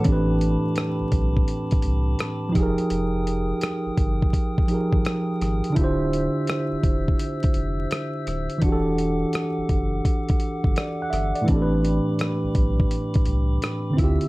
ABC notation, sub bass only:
X:1
M:4/4
L:1/16
Q:"Swing 16ths" 1/4=84
K:Am
V:1 name="Sub bass" clef=bass
A,,,3 z2 B,,, B,,,2 z2 C,,2 z2 F,,, z | F,,,4 z G,,, G,,,2 z3 _A,,, z2 A,,, z | D,,,3 z2 E,,, E,,,2 z2 F,,,2 z2 D,,, z | E,,,4 z ^F,,, F,,,2 z3 G,,, z2 G,,, z |
A,,,3 z2 B,,, B,,,2 z2 C,,2 z2 D,, z |]